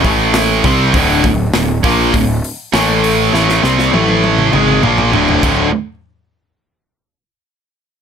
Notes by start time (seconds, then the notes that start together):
0.03 A1 A2 E3 A3, kick, open hi-hat
0.34 snare, open hi-hat
0.64 C2 C3 G3 C4, kick, open hi-hat
0.94 D1 D2 A2 D3, kick, open hi-hat
1.23 D1 D2 A2, kick, open hi-hat
1.54 D1 D2 A2, snare, open hi-hat
1.84 A#1 A#2 F3 A#3, kick, open hi-hat
2.14 D1 D2 A2, kick, open hi-hat
2.44 open hi-hat
2.73 A1 A2 E3 A3, snare, open hi-hat
3.04 open hi-hat
3.33 A1 A2 E3 A3, snare
3.49 snare
3.63 C2 C3 G3 C4, snare
3.79 snare
3.92 A1 A2 E3 A3, high tom
4.09 high tom
4.24 high tom
4.39 mid tom
4.52 G#1 G#2 D#3 G#3, mid tom
4.68 mid tom
4.83 A#1 A#2 F3 A#3, mid tom
4.98 mid tom
5.12 D1 D2 A2 D3, mid tom
5.29 floor tom
5.43 D1 D2 A2 D3, kick, crash